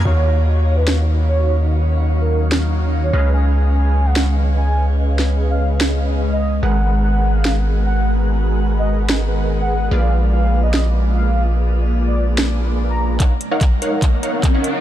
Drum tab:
HH |--------|--------|--------|--------|
CP |--------|--------|--------|--------|
SD |----o---|----o---|----o---|-o--o---|
BD |--------|--------|--------|--------|

HH |--------|--------|--------|--------|
CP |--------|--------|--------|--------|
SD |----o---|----o---|----o---|----o---|
BD |--------|--------|--------|--------|

HH |xxxxxxxx|
CP |x-x-x-x-|
SD |--------|
BD |o-o-o-o-|